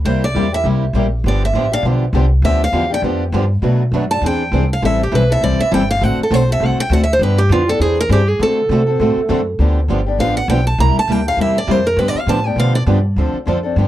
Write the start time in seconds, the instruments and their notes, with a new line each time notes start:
0.05 upright bass C2, steel-string acoustic guitar C3 G3 A#3 E4 G4 C5
0.24 steel-string acoustic guitar D5
0.35 upright bass E2, steel-string acoustic guitar C3 G3 A#3 E4 G4
0.52 steel-string acoustic guitar A#3 E4 G4 E5
0.64 upright bass C2, steel-string acoustic guitar C3 G3 A#3 E4 G4
0.93 upright bass A#1, steel-string acoustic guitar C3 G3 A#3 E4 G4
1.24 upright bass G1, steel-string acoustic guitar D3 F3 B3 D4 G4
1.28 steel-string acoustic guitar D5
1.45 steel-string acoustic guitar E5
1.53 upright bass A1, steel-string acoustic guitar D3 F3 B3 D4 G4
1.72 steel-string acoustic guitar B3 D4 G4 F5
1.83 upright bass B1, steel-string acoustic guitar D3 F3 B3 D4 G4
2.13 upright bass C2, steel-string acoustic guitar D3 F3 B3 D4 G4
2.42 upright bass D2, steel-string acoustic guitar D3 F3 B3 D4 G4 E5
2.64 steel-string acoustic guitar F5
2.73 upright bass E2, steel-string acoustic guitar D3 F3 B3 D4 G4
2.90 steel-string acoustic guitar B3 D4 G4
2.94 steel-string acoustic guitar G5
3.02 upright bass F2, steel-string acoustic guitar D3 F3 B3 D4 G4
3.32 upright bass G2, steel-string acoustic guitar D3 F3 B3 D4 G4
3.62 upright bass B2, steel-string acoustic guitar B2 F#3 A3 D4 F#4 B4
3.92 upright bass F#2, steel-string acoustic guitar B2 F#3 A3 D4 F#4 B4
4.11 steel-string acoustic guitar A3 D4 F#4 A5
4.21 upright bass E2, steel-string acoustic guitar E3 C4 D4 G#4 C5
4.26 steel-string acoustic guitar G5
4.52 upright bass C2, steel-string acoustic guitar E3 C4 D4 G#4 C5
4.73 steel-string acoustic guitar F5
4.82 upright bass A1, steel-string acoustic guitar E3 G3 C4 E4 A4 E5
5.03 steel-string acoustic guitar G4
5.12 upright bass B1, steel-string acoustic guitar E3 G3 C4 E4 A4 B4
5.30 steel-string acoustic guitar C4 E4 A4 E5
5.41 upright bass C2, steel-string acoustic guitar E3 G3 C4 E4 A4 D5
5.59 steel-string acoustic guitar E5, muted upright bass stroke
5.71 upright bass G1, steel-string acoustic guitar E3 G3 C4 E4 A4 G5
5.91 steel-string acoustic guitar F5
6.01 upright bass A1, steel-string acoustic guitar D3 A3 C4 F#4 A4 F#5
6.19 muted upright bass stroke
6.23 steel-string acoustic guitar A4
6.31 upright bass B1, steel-string acoustic guitar D3 A3 C4 F#4 A4 C5
6.49 steel-string acoustic guitar C4 F#4 A4 E5
6.60 upright bass C2, steel-string acoustic guitar D3 A3 C4 F#4 A4
6.66 steel-string acoustic guitar F#5
6.80 steel-string acoustic guitar G5
6.90 upright bass D2, steel-string acoustic guitar D3 A3 C4 F#4 A4 F#5
7.04 steel-string acoustic guitar E5
7.13 steel-string acoustic guitar C5
7.19 upright bass G2, steel-string acoustic guitar D3 F3 B3 D4 G4 B4
7.38 steel-string acoustic guitar G4
7.49 upright bass F2, steel-string acoustic guitar D3 F3 B3 D4 F4 G4
7.68 steel-string acoustic guitar B3 D4 G4 A4
7.79 upright bass E2, steel-string acoustic guitar E3 C4 D4 G#4 C5
8.01 steel-string acoustic guitar A#4
8.09 upright bass G2, steel-string acoustic guitar E3 C4 D4 G4 G#4 C5
8.29 steel-string acoustic guitar G#4
8.39 upright bass D3, steel-string acoustic guitar D3 A3 C4 F#4 A4
8.69 upright bass C3, steel-string acoustic guitar D3 A3 C4 F#4 A4
8.87 steel-string acoustic guitar C4 F#4 A4
9.00 upright bass A2, steel-string acoustic guitar D3 A3 C4 F#4 A4
9.17 muted upright bass stroke
9.29 upright bass F#2, steel-string acoustic guitar D3 A3 C4 F#4 A4
9.59 upright bass D2, steel-string acoustic guitar D3 F3 B3 D4 G4
9.88 upright bass G1, steel-string acoustic guitar D3 F3 B3 D4 G4
10.06 steel-string acoustic guitar B3 D4 G4
10.19 upright bass A1, steel-string acoustic guitar D3 F3 B3 D4 G4 F5
10.37 steel-string acoustic guitar F#5
10.48 upright bass B1, steel-string acoustic guitar D3 F3 B3 D4 G4 G5
10.67 steel-string acoustic guitar A5
10.78 upright bass C2, steel-string acoustic guitar C3 G3 A#3 E4 G4 A#5
10.99 steel-string acoustic guitar A5
11.08 upright bass D2, steel-string acoustic guitar C3 G3 A#3 E4 G4
11.12 steel-string acoustic guitar G5
11.27 steel-string acoustic guitar A#3 E4 G4 F5
11.37 upright bass E2, steel-string acoustic guitar C3 G3 A#3 E4 G4
11.41 steel-string acoustic guitar E5
11.58 steel-string acoustic guitar D5
11.67 upright bass F2, steel-string acoustic guitar C3 G3 A#3 E4 G4 C5
11.87 steel-string acoustic guitar A#4
11.96 upright bass G2, steel-string acoustic guitar D3 F3 B3 D4 G4 B4
12.08 steel-string acoustic guitar D5
12.14 muted upright bass stroke
12.19 steel-string acoustic guitar F5
12.27 upright bass A2, steel-string acoustic guitar D3 F3 B3 D4 G4 A5
12.45 steel-string acoustic guitar B3 D4 G4 G5
12.56 upright bass B2, steel-string acoustic guitar D3 F3 B3 D4 G4 F5
12.75 steel-string acoustic guitar D5
12.87 upright bass G2, steel-string acoustic guitar D3 F3 B3 D4 G4
13.16 upright bass D2, steel-string acoustic guitar D3 F3 C4 D4 A4
13.33 muted upright bass stroke
13.46 upright bass F2, steel-string acoustic guitar D3 F3 C4 D4 A4
13.63 steel-string acoustic guitar C4 D4 A4
13.76 upright bass G2, steel-string acoustic guitar D3 F3 B3 D4 G4